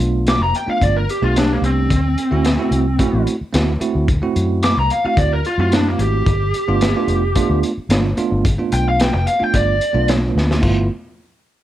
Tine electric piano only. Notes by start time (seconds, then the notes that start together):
Already playing: A3 B3 D4 F4
0.66 A3 B3 D4 F4
1.22 A3 B3 D4 G4
2.31 A3 C4 E4 F#4
2.58 A3 C4 E4 F#4
2.99 A3 C4 E4 F#4
3.53 A3 C4 E4 F#4
3.80 A3 C4 E4 F#4
4.22 A3 C4 E4 F#4
5.04 A3 C4 E4 F#4
5.59 A3 C4 E4 F#4
6.68 A3 B3 D4 F4
6.96 A3 B3 D4 F4
7.36 A3 B3 D4 F4
7.91 A3 B3 D4 F4
8.17 A3 B3 D4 F4
8.58 A3 B3 D4 F4
9.39 A3 B3 D4 F4
9.93 A3 B3 D4 F4
10.62 A3 B3 E4 F4